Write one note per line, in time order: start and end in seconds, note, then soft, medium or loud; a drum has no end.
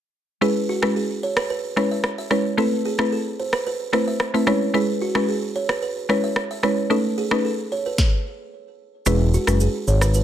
0.41 0.79 G#3 medium
0.41 0.79 C#4 medium
0.41 0.79 E4 medium
0.41 0.51 G#4 loud
0.41 0.79 B4 loud
0.69 0.78 F#4 medium
0.82 1.00 G#3 medium
0.82 1.00 C#4 medium
0.82 1.00 E4 medium
0.82 1.00 B4 medium
0.82 cross-stick loud
0.96 1.05 G#4 medium
1.23 1.32 C#5 medium
1.37 1.46 B4 medium
1.37 cross-stick loud
1.50 1.59 B4 medium
1.76 1.95 G#3 medium
1.76 1.95 C#4 medium
1.76 1.95 E4 medium
1.76 1.95 B4 medium
1.76 1.86 C#5 medium
1.76 cross-stick medium
1.91 2.00 E5 medium
2.04 cross-stick medium
2.18 2.27 E5 medium
2.30 2.56 G#3 medium
2.30 2.56 C#4 medium
2.30 2.56 E4 medium
2.30 2.56 B4 medium
2.30 2.41 C#5 medium
2.30 cross-stick medium
2.57 2.95 A3 medium
2.57 2.95 C4 medium
2.57 2.96 E4 medium
2.57 2.68 A4 loud
2.57 2.96 B4 loud
2.85 2.95 G#4 medium
2.99 3.16 A3 medium
2.99 3.16 C4 medium
2.99 3.16 E4 medium
2.99 3.16 B4 medium
2.99 cross-stick loud
3.13 3.22 A4 medium
3.40 3.49 C5 medium
3.53 3.62 B4 medium
3.53 cross-stick medium
3.67 3.76 B4 medium
3.93 4.11 A3 medium
3.93 4.11 C4 medium
3.93 4.11 E4 medium
3.93 4.11 B4 medium
3.93 4.03 C5 medium
3.93 cross-stick medium
4.08 4.16 E5 medium
4.20 cross-stick medium
4.34 4.51 A3 medium
4.34 4.51 C4 medium
4.34 4.46 E4 medium
4.34 4.46 B4 medium
4.34 4.43 E5 medium
4.47 4.72 G#3 medium
4.47 4.72 C#4 medium
4.47 4.72 E4 medium
4.47 4.72 B4 loud
4.47 4.57 C#5 medium
4.47 cross-stick medium
4.74 5.12 G#3 medium
4.74 5.12 C#4 medium
4.74 5.12 E4 medium
4.74 4.84 G#4 loud
4.74 5.12 B4 loud
5.02 5.11 F#4 medium
5.15 5.32 G#3 medium
5.15 5.32 C#4 medium
5.15 5.32 E4 medium
5.15 5.32 B4 medium
5.15 cross-stick loud
5.29 5.38 G#4 medium
5.56 5.65 C#5 medium
5.69 5.78 B4 medium
5.69 cross-stick medium
5.83 5.92 B4 medium
6.09 6.27 G#3 medium
6.09 6.27 C#4 medium
6.09 6.27 E4 medium
6.09 6.27 B4 medium
6.09 6.19 C#5 medium
6.09 cross-stick medium
6.24 6.32 E5 medium
6.36 cross-stick medium
6.51 6.59 E5 medium
6.63 6.88 G#3 medium
6.63 6.88 C#4 medium
6.63 6.88 E4 medium
6.63 6.88 B4 medium
6.63 6.73 C#5 medium
6.63 cross-stick medium
6.90 7.28 A3 medium
6.90 7.28 C#4 medium
6.90 7.28 D#4 medium
6.90 7.00 A4 loud
6.90 7.28 B4 loud
7.18 7.27 G#4 medium
7.31 7.48 A3 medium
7.31 7.48 C#4 medium
7.31 7.49 D#4 medium
7.31 7.49 B4 medium
7.31 cross-stick loud
7.45 7.54 A4 medium
7.72 7.81 C#5 medium
7.86 7.94 B4 medium
7.98 kick loud
7.98 snare medium
9.06 9.37 E1 loud
9.06 9.44 G#3 medium
9.06 9.44 C#4 medium
9.06 9.44 E4 medium
9.06 9.16 G#4 loud
9.06 9.44 B4 loud
9.06 shaker medium
9.34 9.43 F#4 medium
9.34 shaker soft
9.47 9.68 F#1 medium
9.47 9.65 G#3 medium
9.47 9.65 C#4 medium
9.47 9.65 E4 medium
9.47 9.65 B4 medium
9.47 cross-stick loud
9.47 shaker medium
9.60 9.70 G#4 medium
9.60 shaker medium
9.87 10.24 G#1 medium
9.87 9.97 C#5 medium
9.87 shaker soft
10.01 10.11 B4 medium
10.01 cross-stick loud
10.01 shaker medium
10.14 10.24 B4 medium
10.14 shaker medium